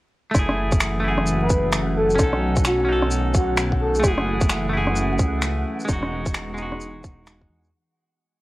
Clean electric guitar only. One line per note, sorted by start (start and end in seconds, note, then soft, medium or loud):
0.31 0.99 A3 medium
0.31 1.02 E4 medium
0.39 1.04 G#4 medium
1.00 2.15 A3 medium
1.04 2.17 E4 medium
1.04 2.19 G#4 medium
2.15 2.84 C#4 medium
2.15 2.87 D#4 medium
2.23 2.89 A4 loud
2.85 3.99 C#4 medium
2.85 4.02 D#4 medium
2.93 4.04 A4 medium
4.00 4.68 A3 medium
4.00 4.71 E4 medium
4.08 4.73 G#4 loud
4.69 5.85 A3 medium
4.69 5.87 E4 medium
4.77 5.89 G#4 medium
5.85 6.53 G#3 medium
5.85 6.56 D#4 medium
5.93 6.58 F#4 loud
6.54 7.69 G#3 medium
6.58 7.71 D#4 medium
6.58 7.73 F#4 medium